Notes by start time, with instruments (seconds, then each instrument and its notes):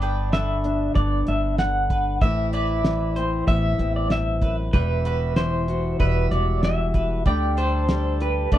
Already playing: upright bass G1, steel-string acoustic guitar G2 D3, mandolin B3, clean electric guitar D5
0.02 mandolin D4 B4 G5, closed hi-hat
0.32 steel-string acoustic guitar D3, mandolin B4, clean electric guitar E5, snare, closed hi-hat
0.64 steel-string acoustic guitar D4, closed hi-hat
0.95 upright bass G1, steel-string acoustic guitar G2 B3, clean electric guitar D5, kick, closed hi-hat
1.27 upright bass G1, steel-string acoustic guitar D4, clean electric guitar E5, closed hi-hat
1.58 steel-string acoustic guitar D3, clean electric guitar F#5, snare, closed hi-hat
1.90 mandolin B4, kick, closed hi-hat
2.21 upright bass A1, steel-string acoustic guitar A2 E3 C4 E4, clean electric guitar E5, mandolin E5, kick, closed hi-hat
2.53 mandolin E4 B4 E5, clean electric guitar D5, closed hi-hat
2.85 steel-string acoustic guitar E3, snare, closed hi-hat
3.16 steel-string acoustic guitar C4, clean electric guitar C5, closed hi-hat
3.47 upright bass A1, steel-string acoustic guitar E2 B3, clean electric guitar E5, mandolin E5, kick, closed hi-hat
3.78 upright bass A1, steel-string acoustic guitar C4, closed hi-hat
3.96 clean electric guitar D5
4.10 steel-string acoustic guitar G2, clean electric guitar E5, snare, closed hi-hat
4.42 steel-string acoustic guitar F#2, mandolin B4, kick, closed hi-hat
4.73 upright bass E1, steel-string acoustic guitar E2, mandolin G3 E5, clean electric guitar B4, kick, closed hi-hat
5.05 mandolin F#4 B4 E5, closed hi-hat
5.36 steel-string acoustic guitar E3, clean electric guitar C5, snare, closed hi-hat
5.68 steel-string acoustic guitar F#4, closed hi-hat
6.00 upright bass E1, steel-string acoustic guitar B2 G3, clean electric guitar B4, mandolin E5, kick, closed hi-hat
6.31 upright bass E1, steel-string acoustic guitar F#4, clean electric guitar D5, closed hi-hat
6.63 steel-string acoustic guitar E3, clean electric guitar E5, snare, closed hi-hat
6.94 mandolin B4, kick, closed hi-hat
7.26 upright bass D2, steel-string acoustic guitar D3, mandolin G3 G5, clean electric guitar D5, kick, closed hi-hat
7.57 mandolin D4 A4 G5, clean electric guitar C5, closed hi-hat
7.89 steel-string acoustic guitar G3, mandolin A4, snare, closed hi-hat
8.20 steel-string acoustic guitar G4, clean electric guitar B4, closed hi-hat
8.52 upright bass D2, steel-string acoustic guitar D3, mandolin A3, clean electric guitar D5, kick, closed hi-hat